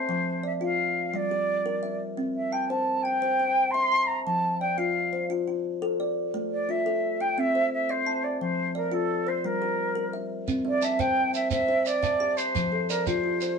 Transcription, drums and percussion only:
10.48 shekere
10.82 shekere
10.99 shekere
11.34 shekere
11.51 shekere
11.86 shekere
12.03 shekere
12.38 shekere
12.55 shekere
12.90 shekere
13.07 shekere
13.41 shekere

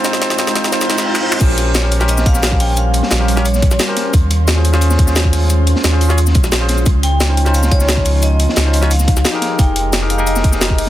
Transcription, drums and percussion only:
0.05 snare, closed hi-hat, shaker
0.13 snare
0.22 snare, closed hi-hat
0.30 snare
0.39 snare, closed hi-hat, shaker
0.47 snare, shaker
0.55 snare, closed hi-hat
0.64 snare, shaker
0.73 snare, closed hi-hat, shaker
0.81 snare, shaker
0.90 snare, closed hi-hat
0.98 snare, shaker
1.15 clap
1.32 clap
1.41 kick, closed hi-hat, crash, shaker
1.58 closed hi-hat
1.74 snare, closed hi-hat, shaker
1.91 closed hi-hat
2.01 snare, shaker
2.08 closed hi-hat, shaker
2.18 snare, shaker
2.26 kick, closed hi-hat
2.34 snare, shaker
2.43 snare, closed hi-hat, shaker
2.52 kick
2.60 closed hi-hat, open hi-hat
2.77 closed hi-hat, shaker
2.94 closed hi-hat
3.03 snare
3.11 snare, closed hi-hat, shaker
3.28 closed hi-hat, open hi-hat
3.37 snare, shaker
3.45 closed hi-hat, shaker
3.54 snare, shaker
3.62 kick, closed hi-hat
3.71 snare, shaker
3.79 snare, closed hi-hat, shaker
3.97 snare, closed hi-hat
4.13 kick, closed hi-hat, shaker
4.31 closed hi-hat
4.48 snare, closed hi-hat, shaker
4.64 closed hi-hat
4.74 snare, shaker
4.81 closed hi-hat, shaker
4.91 snare, shaker
4.99 kick, closed hi-hat
5.07 snare, shaker
5.16 snare, closed hi-hat, shaker
5.25 kick
5.33 closed hi-hat, open hi-hat
5.50 closed hi-hat, shaker
5.67 closed hi-hat
5.76 snare
5.84 snare, closed hi-hat, shaker
6.01 closed hi-hat, open hi-hat
6.10 snare, shaker
6.18 closed hi-hat, shaker
6.27 snare, shaker
6.35 kick, closed hi-hat
6.44 snare, shaker
6.52 snare, closed hi-hat, shaker
6.69 snare, closed hi-hat
6.78 shaker
6.86 kick, closed hi-hat, shaker
7.03 closed hi-hat
7.20 snare, closed hi-hat, shaker
7.37 closed hi-hat
7.46 snare, shaker
7.54 closed hi-hat, shaker
7.63 snare, shaker
7.71 kick, closed hi-hat
7.80 snare, shaker
7.88 snare, closed hi-hat, shaker
7.97 kick
8.05 closed hi-hat, open hi-hat
8.22 closed hi-hat, shaker
8.39 closed hi-hat
8.49 snare
8.56 snare, closed hi-hat, shaker
8.73 closed hi-hat, open hi-hat
8.83 snare, shaker
8.91 closed hi-hat, shaker
8.99 snare, shaker
9.08 kick, closed hi-hat
9.17 snare, shaker
9.25 snare, closed hi-hat, shaker
9.41 snare, closed hi-hat
9.59 kick, closed hi-hat, shaker
9.76 closed hi-hat
9.93 snare, closed hi-hat, shaker
10.10 closed hi-hat
10.19 shaker
10.27 closed hi-hat, shaker
10.36 snare, shaker
10.44 kick, closed hi-hat
10.52 snare, shaker
10.61 snare, closed hi-hat, shaker
10.70 kick
10.78 closed hi-hat, open hi-hat

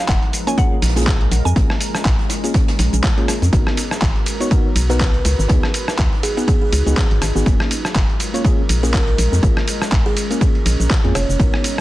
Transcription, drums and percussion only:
0.08 kick, snare, clap, closed hi-hat, shaker
0.23 closed hi-hat
0.33 closed hi-hat, open hi-hat, shaker
0.47 closed hi-hat, shaker
0.58 kick, closed hi-hat, shaker
0.82 snare, closed hi-hat, open hi-hat, shaker
0.89 snare, closed hi-hat
0.96 snare, closed hi-hat, shaker
1.01 snare, closed hi-hat
1.07 kick, snare, clap, closed hi-hat, shaker
1.21 closed hi-hat
1.31 closed hi-hat, open hi-hat, shaker
1.46 shaker
1.56 kick, snare, closed hi-hat, shaker
1.70 cross-stick
1.81 closed hi-hat, open hi-hat, shaker
1.95 cross-stick, closed hi-hat, shaker
2.05 kick, snare, clap, closed hi-hat, shaker
2.19 snare, closed hi-hat
2.29 snare, closed hi-hat, open hi-hat, shaker
2.44 snare, closed hi-hat, shaker
2.54 kick, snare, closed hi-hat, shaker
2.68 snare, closed hi-hat, open hi-hat
2.79 snare, closed hi-hat, open hi-hat, shaker
2.93 closed hi-hat, shaker
3.03 kick, snare, clap, closed hi-hat, shaker
3.18 closed hi-hat
3.28 cross-stick, closed hi-hat, open hi-hat, shaker
3.42 snare, closed hi-hat, shaker
3.53 kick, closed hi-hat, ride, shaker
3.67 cross-stick
3.77 closed hi-hat, open hi-hat, ride, shaker
3.91 cross-stick, shaker
4.02 kick, snare, clap, closed hi-hat, ride, shaker
4.16 closed hi-hat
4.26 closed hi-hat, open hi-hat, ride, shaker
4.41 closed hi-hat, shaker
4.51 kick, closed hi-hat, ride, shaker
4.76 closed hi-hat, open hi-hat, ride, shaker
4.89 snare, closed hi-hat, shaker
5.00 kick, snare, clap, closed hi-hat, ride, shaker
5.14 closed hi-hat
5.25 snare, closed hi-hat, open hi-hat, ride, shaker
5.39 snare, shaker
5.48 kick, snare, closed hi-hat, ride, shaker
5.63 cross-stick
5.74 closed hi-hat, open hi-hat, ride, shaker
5.88 cross-stick, shaker
5.98 kick, snare, clap, closed hi-hat, ride, shaker
6.13 snare, closed hi-hat
6.23 closed hi-hat, open hi-hat, ride, shaker
6.37 closed hi-hat, shaker
6.48 kick, closed hi-hat, ride, shaker
6.72 closed hi-hat, open hi-hat, ride, shaker
6.86 closed hi-hat, shaker
6.97 kick, snare, clap, closed hi-hat, ride, shaker
7.11 closed hi-hat
7.21 cross-stick, closed hi-hat, open hi-hat, ride, shaker
7.36 snare, shaker
7.46 kick, closed hi-hat, ride, shaker
7.60 cross-stick
7.71 closed hi-hat, open hi-hat, ride, shaker
7.85 cross-stick, shaker
7.95 kick, snare, clap, closed hi-hat, ride, shaker
8.10 closed hi-hat
8.19 closed hi-hat, open hi-hat, ride, shaker
8.34 closed hi-hat, shaker
8.45 kick, closed hi-hat, ride, shaker
8.69 closed hi-hat, open hi-hat, ride, shaker
8.83 snare, closed hi-hat, shaker
8.93 kick, snare, clap, closed hi-hat, ride, shaker
9.08 closed hi-hat
9.18 closed hi-hat, open hi-hat, ride, shaker
9.32 snare, shaker
9.43 kick, closed hi-hat, ride, shaker
9.57 cross-stick
9.67 closed hi-hat, open hi-hat, ride, shaker
9.82 cross-stick, shaker
9.92 kick, snare, clap, closed hi-hat, ride, shaker
10.06 snare, closed hi-hat
10.16 closed hi-hat, open hi-hat, ride, shaker
10.31 closed hi-hat, shaker
10.41 kick, closed hi-hat, ride, shaker
10.55 closed hi-hat
10.66 closed hi-hat, open hi-hat, ride, shaker
10.80 closed hi-hat, shaker
10.90 kick, snare, clap, closed hi-hat, ride, shaker
11.04 closed hi-hat
11.15 cross-stick, closed hi-hat, open hi-hat, ride, shaker
11.29 snare, shaker
11.40 kick, closed hi-hat, ride, shaker
11.54 cross-stick
11.64 closed hi-hat, open hi-hat, ride, shaker

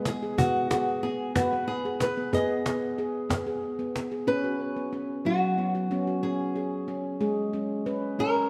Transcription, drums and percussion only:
0.05 cajon slap
0.22 cajon slap
0.38 cajon bass
0.71 cajon slap
1.36 cajon bass, cajon slap
1.52 cajon slap
2.00 cajon slap
2.18 cajon slap
2.33 cajon bass, cajon slap
2.50 cajon slap
2.66 cajon slap
3.30 cajon bass, cajon slap
3.96 cajon slap
4.12 cajon slap

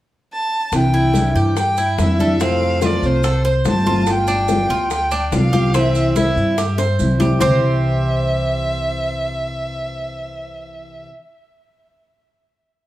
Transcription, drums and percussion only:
0.72 high bongo, high conga, maracas
0.94 high bongo, high conga
1.14 high bongo, high conga, maracas
1.35 high bongo, high conga, maracas
1.57 high bongo, high conga, maracas
1.77 high conga, maracas
1.98 high bongo, low bongo, high conga, maracas
2.19 high bongo, high conga, maracas
2.40 high bongo, high conga, maracas
2.61 high bongo, high conga
2.82 high bongo, high conga, maracas
3.03 high conga, maracas
3.23 high bongo, high conga, maracas
3.44 high bongo, high conga
3.65 high bongo, low bongo, high conga, maracas
3.86 high bongo, high conga, maracas
4.06 high bongo, high conga, maracas
4.27 high bongo, high conga, maracas
4.48 high bongo, high conga, maracas
4.70 high bongo, high conga, maracas
4.90 high bongo, high conga, maracas
5.11 high conga, maracas
5.32 high bongo, low bongo, high conga, maracas
5.53 high bongo, high conga, maracas
5.74 high bongo, high conga, maracas
5.94 high bongo, high conga, maracas
6.16 high bongo, high conga, maracas
6.36 high conga, maracas
6.58 high bongo, high conga, maracas
6.78 high bongo, high conga, maracas
6.99 high conga, maracas
7.20 low bongo, high conga, maracas
7.40 low bongo, low conga, maracas

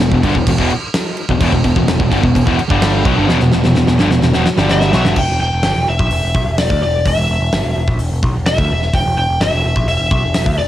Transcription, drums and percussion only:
0.12 kick
0.23 kick, crash
0.35 kick
0.47 kick, crash
0.58 kick
0.70 crash
0.94 snare, crash
1.17 crash
1.29 kick
1.41 kick, crash
1.53 kick
1.64 kick, crash
1.76 kick
1.88 snare, crash
2.00 kick
2.12 kick, crash
2.24 kick
2.35 kick, crash
2.47 kick
2.59 crash
2.70 kick
2.82 snare, crash
3.05 kick, crash
3.29 snare
3.40 snare
3.52 snare
3.64 snare
3.75 snare
3.87 snare
3.99 snare
4.11 snare
4.22 snare
4.34 snare
4.46 snare
4.58 snare
4.70 snare
4.81 snare
4.93 snare
5.05 snare
5.16 kick, crash
5.63 snare, open hi-hat
5.99 kick
6.11 open hi-hat
6.35 kick
6.58 snare, open hi-hat
6.70 kick
7.06 kick, open hi-hat
7.53 snare, open hi-hat
7.88 kick
7.99 open hi-hat
8.23 kick
8.46 snare, open hi-hat
8.58 kick
8.82 snare
8.94 kick, open hi-hat
9.41 snare, open hi-hat
9.76 kick
9.88 open hi-hat
10.11 kick
10.34 snare, open hi-hat
10.46 kick

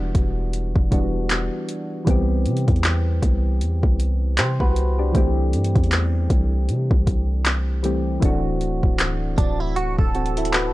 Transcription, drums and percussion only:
0.15 kick, closed hi-hat
0.53 closed hi-hat
0.76 kick
0.92 kick, closed hi-hat
1.30 clap, closed hi-hat
1.69 closed hi-hat
2.07 kick, closed hi-hat
2.46 closed hi-hat
2.57 closed hi-hat
2.68 kick, closed hi-hat
2.76 closed hi-hat
2.84 clap, closed hi-hat
3.22 kick, closed hi-hat
3.61 closed hi-hat
3.83 kick
4.00 closed hi-hat
4.38 clap, closed hi-hat
4.60 kick
4.76 closed hi-hat
5.15 kick, closed hi-hat
5.53 closed hi-hat
5.64 closed hi-hat
5.75 kick, closed hi-hat
5.84 closed hi-hat
5.92 clap, closed hi-hat
6.30 kick, closed hi-hat
6.69 closed hi-hat
6.91 kick
7.07 kick, closed hi-hat
7.45 clap, closed hi-hat
7.84 closed hi-hat
8.22 kick, closed hi-hat
8.61 closed hi-hat
8.83 kick
8.99 clap, closed hi-hat
9.38 kick, closed hi-hat
9.76 closed hi-hat
9.99 kick
10.15 closed hi-hat
10.26 closed hi-hat
10.37 closed hi-hat
10.45 closed hi-hat
10.53 clap, closed hi-hat

